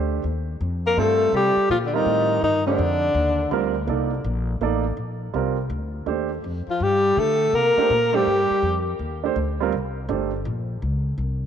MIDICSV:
0, 0, Header, 1, 6, 480
1, 0, Start_track
1, 0, Tempo, 364520
1, 1283, Time_signature, 4, 2, 24, 8
1, 15096, End_track
2, 0, Start_track
2, 0, Title_t, "Alto saxophone"
2, 0, Program_c, 0, 65
2, 1144, Note_on_c, 0, 70, 86
2, 1305, Note_on_c, 0, 69, 90
2, 1325, Note_off_c, 0, 70, 0
2, 1774, Note_off_c, 0, 69, 0
2, 1795, Note_on_c, 0, 67, 88
2, 2226, Note_off_c, 0, 67, 0
2, 2254, Note_on_c, 0, 65, 81
2, 2338, Note_off_c, 0, 65, 0
2, 2450, Note_on_c, 0, 62, 60
2, 2562, Note_on_c, 0, 63, 92
2, 2582, Note_off_c, 0, 62, 0
2, 3204, Note_off_c, 0, 63, 0
2, 3212, Note_on_c, 0, 63, 79
2, 3496, Note_off_c, 0, 63, 0
2, 3517, Note_on_c, 0, 62, 81
2, 4902, Note_off_c, 0, 62, 0
2, 8828, Note_on_c, 0, 65, 72
2, 8998, Note_on_c, 0, 67, 84
2, 9017, Note_off_c, 0, 65, 0
2, 9476, Note_on_c, 0, 69, 93
2, 9496, Note_off_c, 0, 67, 0
2, 9943, Note_on_c, 0, 70, 105
2, 9963, Note_off_c, 0, 69, 0
2, 10737, Note_on_c, 0, 67, 87
2, 10757, Note_off_c, 0, 70, 0
2, 11685, Note_off_c, 0, 67, 0
2, 15096, End_track
3, 0, Start_track
3, 0, Title_t, "Grand piano"
3, 0, Program_c, 1, 0
3, 0, Note_on_c, 1, 57, 60
3, 0, Note_on_c, 1, 62, 55
3, 0, Note_on_c, 1, 67, 55
3, 0, Note_on_c, 1, 72, 71
3, 281, Note_off_c, 1, 57, 0
3, 286, Note_off_c, 1, 62, 0
3, 287, Note_off_c, 1, 67, 0
3, 293, Note_off_c, 1, 72, 0
3, 1277, Note_on_c, 1, 55, 57
3, 1285, Note_on_c, 1, 60, 56
3, 1293, Note_on_c, 1, 65, 57
3, 1296, Note_on_c, 1, 72, 67
3, 2008, Note_off_c, 1, 55, 0
3, 2012, Note_off_c, 1, 60, 0
3, 2016, Note_off_c, 1, 65, 0
3, 2018, Note_off_c, 1, 72, 0
3, 2550, Note_on_c, 1, 55, 66
3, 2563, Note_on_c, 1, 60, 52
3, 2565, Note_on_c, 1, 65, 60
3, 2576, Note_on_c, 1, 70, 72
3, 3167, Note_off_c, 1, 55, 0
3, 3174, Note_off_c, 1, 60, 0
3, 3175, Note_off_c, 1, 65, 0
3, 3180, Note_off_c, 1, 70, 0
3, 3511, Note_on_c, 1, 57, 60
3, 3525, Note_on_c, 1, 62, 54
3, 3530, Note_on_c, 1, 67, 59
3, 3539, Note_on_c, 1, 72, 65
3, 3664, Note_off_c, 1, 57, 0
3, 3672, Note_off_c, 1, 62, 0
3, 3674, Note_off_c, 1, 67, 0
3, 3679, Note_off_c, 1, 72, 0
3, 4624, Note_on_c, 1, 55, 65
3, 4633, Note_on_c, 1, 60, 62
3, 4640, Note_on_c, 1, 65, 52
3, 4649, Note_on_c, 1, 70, 73
3, 4913, Note_off_c, 1, 55, 0
3, 4917, Note_off_c, 1, 60, 0
3, 4921, Note_off_c, 1, 65, 0
3, 4925, Note_off_c, 1, 70, 0
3, 5099, Note_on_c, 1, 58, 51
3, 5114, Note_on_c, 1, 63, 50
3, 5124, Note_on_c, 1, 69, 50
3, 5128, Note_on_c, 1, 74, 54
3, 5390, Note_off_c, 1, 58, 0
3, 5398, Note_off_c, 1, 63, 0
3, 5403, Note_off_c, 1, 69, 0
3, 5405, Note_off_c, 1, 74, 0
3, 6075, Note_on_c, 1, 58, 62
3, 6086, Note_on_c, 1, 63, 59
3, 6088, Note_on_c, 1, 69, 55
3, 6098, Note_on_c, 1, 74, 67
3, 6358, Note_off_c, 1, 58, 0
3, 6364, Note_off_c, 1, 63, 0
3, 6365, Note_off_c, 1, 69, 0
3, 6370, Note_off_c, 1, 74, 0
3, 7027, Note_on_c, 1, 55, 61
3, 7035, Note_on_c, 1, 60, 52
3, 7046, Note_on_c, 1, 65, 53
3, 7057, Note_on_c, 1, 70, 64
3, 7314, Note_off_c, 1, 55, 0
3, 7318, Note_off_c, 1, 60, 0
3, 7324, Note_off_c, 1, 65, 0
3, 7329, Note_off_c, 1, 70, 0
3, 7980, Note_on_c, 1, 57, 53
3, 7990, Note_on_c, 1, 62, 48
3, 7999, Note_on_c, 1, 67, 51
3, 8008, Note_on_c, 1, 72, 62
3, 8271, Note_off_c, 1, 57, 0
3, 8276, Note_off_c, 1, 62, 0
3, 8280, Note_off_c, 1, 67, 0
3, 8284, Note_off_c, 1, 72, 0
3, 10236, Note_on_c, 1, 57, 65
3, 10247, Note_on_c, 1, 62, 57
3, 10252, Note_on_c, 1, 67, 63
3, 10257, Note_on_c, 1, 72, 72
3, 10387, Note_off_c, 1, 57, 0
3, 10393, Note_off_c, 1, 62, 0
3, 10395, Note_off_c, 1, 67, 0
3, 10398, Note_off_c, 1, 72, 0
3, 10703, Note_on_c, 1, 57, 73
3, 10715, Note_on_c, 1, 62, 63
3, 10721, Note_on_c, 1, 67, 58
3, 10728, Note_on_c, 1, 72, 69
3, 10860, Note_off_c, 1, 57, 0
3, 10866, Note_off_c, 1, 62, 0
3, 10870, Note_off_c, 1, 67, 0
3, 10873, Note_off_c, 1, 72, 0
3, 12162, Note_on_c, 1, 62, 60
3, 12166, Note_on_c, 1, 57, 59
3, 12170, Note_on_c, 1, 67, 56
3, 12190, Note_on_c, 1, 72, 77
3, 12310, Note_off_c, 1, 62, 0
3, 12312, Note_off_c, 1, 57, 0
3, 12314, Note_off_c, 1, 67, 0
3, 12324, Note_off_c, 1, 72, 0
3, 12647, Note_on_c, 1, 55, 75
3, 12655, Note_on_c, 1, 60, 67
3, 12668, Note_on_c, 1, 65, 62
3, 12677, Note_on_c, 1, 70, 75
3, 12793, Note_off_c, 1, 55, 0
3, 12797, Note_off_c, 1, 60, 0
3, 12804, Note_off_c, 1, 65, 0
3, 12808, Note_off_c, 1, 70, 0
3, 13283, Note_on_c, 1, 57, 59
3, 13289, Note_on_c, 1, 62, 48
3, 13296, Note_on_c, 1, 67, 52
3, 13309, Note_on_c, 1, 72, 57
3, 13562, Note_off_c, 1, 57, 0
3, 13566, Note_off_c, 1, 62, 0
3, 13569, Note_off_c, 1, 67, 0
3, 13575, Note_off_c, 1, 72, 0
3, 15096, End_track
4, 0, Start_track
4, 0, Title_t, "Tenor saxophone"
4, 0, Program_c, 2, 66
4, 1139, Note_on_c, 2, 58, 78
4, 1299, Note_on_c, 2, 57, 84
4, 1319, Note_off_c, 2, 58, 0
4, 1757, Note_off_c, 2, 57, 0
4, 1765, Note_on_c, 2, 55, 76
4, 2210, Note_off_c, 2, 55, 0
4, 2243, Note_on_c, 2, 53, 60
4, 2329, Note_off_c, 2, 53, 0
4, 2424, Note_on_c, 2, 50, 55
4, 2547, Note_on_c, 2, 51, 72
4, 2567, Note_off_c, 2, 50, 0
4, 3184, Note_off_c, 2, 51, 0
4, 3192, Note_on_c, 2, 51, 75
4, 3485, Note_off_c, 2, 51, 0
4, 3502, Note_on_c, 2, 50, 70
4, 4895, Note_off_c, 2, 50, 0
4, 8813, Note_on_c, 2, 53, 67
4, 8991, Note_on_c, 2, 55, 82
4, 9010, Note_off_c, 2, 53, 0
4, 9454, Note_on_c, 2, 57, 86
4, 9474, Note_off_c, 2, 55, 0
4, 9944, Note_on_c, 2, 58, 73
4, 9964, Note_off_c, 2, 57, 0
4, 10718, Note_on_c, 2, 55, 71
4, 10737, Note_off_c, 2, 58, 0
4, 11675, Note_off_c, 2, 55, 0
4, 15096, End_track
5, 0, Start_track
5, 0, Title_t, "Upright bass"
5, 0, Program_c, 3, 32
5, 0, Note_on_c, 3, 38, 89
5, 300, Note_off_c, 3, 38, 0
5, 315, Note_on_c, 3, 39, 83
5, 784, Note_off_c, 3, 39, 0
5, 798, Note_on_c, 3, 41, 88
5, 1266, Note_off_c, 3, 41, 0
5, 1276, Note_on_c, 3, 43, 76
5, 1734, Note_off_c, 3, 43, 0
5, 1742, Note_on_c, 3, 48, 81
5, 2040, Note_off_c, 3, 48, 0
5, 2234, Note_on_c, 3, 46, 83
5, 2704, Note_off_c, 3, 46, 0
5, 2710, Note_on_c, 3, 45, 85
5, 3182, Note_off_c, 3, 45, 0
5, 3192, Note_on_c, 3, 43, 81
5, 3660, Note_off_c, 3, 43, 0
5, 3668, Note_on_c, 3, 41, 90
5, 4133, Note_off_c, 3, 41, 0
5, 4141, Note_on_c, 3, 39, 88
5, 4617, Note_off_c, 3, 39, 0
5, 4624, Note_on_c, 3, 38, 82
5, 5095, Note_off_c, 3, 38, 0
5, 5102, Note_on_c, 3, 36, 84
5, 5578, Note_off_c, 3, 36, 0
5, 5589, Note_on_c, 3, 34, 91
5, 6061, Note_off_c, 3, 34, 0
5, 6069, Note_on_c, 3, 33, 76
5, 6536, Note_off_c, 3, 33, 0
5, 6544, Note_on_c, 3, 34, 79
5, 7018, Note_off_c, 3, 34, 0
5, 7032, Note_on_c, 3, 36, 75
5, 7493, Note_off_c, 3, 36, 0
5, 7501, Note_on_c, 3, 38, 84
5, 7977, Note_off_c, 3, 38, 0
5, 7985, Note_on_c, 3, 39, 75
5, 8459, Note_off_c, 3, 39, 0
5, 8479, Note_on_c, 3, 41, 77
5, 8769, Note_off_c, 3, 41, 0
5, 8957, Note_on_c, 3, 43, 81
5, 9425, Note_off_c, 3, 43, 0
5, 9442, Note_on_c, 3, 50, 87
5, 9908, Note_off_c, 3, 50, 0
5, 9914, Note_on_c, 3, 48, 76
5, 10207, Note_off_c, 3, 48, 0
5, 10403, Note_on_c, 3, 46, 91
5, 10868, Note_off_c, 3, 46, 0
5, 10885, Note_on_c, 3, 43, 75
5, 11173, Note_off_c, 3, 43, 0
5, 11357, Note_on_c, 3, 41, 84
5, 11826, Note_off_c, 3, 41, 0
5, 11842, Note_on_c, 3, 39, 77
5, 12308, Note_off_c, 3, 39, 0
5, 12323, Note_on_c, 3, 38, 89
5, 12789, Note_off_c, 3, 38, 0
5, 12804, Note_on_c, 3, 36, 81
5, 13269, Note_off_c, 3, 36, 0
5, 13281, Note_on_c, 3, 31, 93
5, 13748, Note_off_c, 3, 31, 0
5, 13764, Note_on_c, 3, 34, 87
5, 14229, Note_off_c, 3, 34, 0
5, 14250, Note_on_c, 3, 37, 82
5, 14709, Note_off_c, 3, 37, 0
5, 14717, Note_on_c, 3, 36, 82
5, 15096, Note_off_c, 3, 36, 0
5, 15096, End_track
6, 0, Start_track
6, 0, Title_t, "Muted upright bass strokes"
6, 2059, Note_on_c, 9, 29, 35
6, 2191, Note_off_c, 9, 29, 0
6, 8782, Note_on_c, 9, 29, 36
6, 8914, Note_off_c, 9, 29, 0
6, 10233, Note_on_c, 9, 29, 39
6, 10364, Note_off_c, 9, 29, 0
6, 11197, Note_on_c, 9, 29, 39
6, 11328, Note_off_c, 9, 29, 0
6, 15096, End_track
0, 0, End_of_file